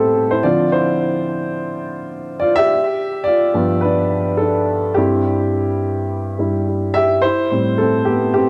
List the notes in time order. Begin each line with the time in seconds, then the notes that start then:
Already playing: A2 G3 B3 C4 E4 G4 A4 C5
0.31 E4 C5
0.43 D3 F3 C4 F4 D5
0.72 E4 C5
2.40 F4 D5
2.56 G4 E5
3.24 F4 D5
3.54 G2 F3 B3
3.81 D4 B4
4.37 D4 A4
4.94 G2 G3 C4 E4 G4
6.39 G2 G3 E4
6.94 G4 E5
7.22 E4 C5
7.51 A2 G3 C4
7.78 C4 A4
8.05 G4
8.09 B3
8.34 G4
8.38 C4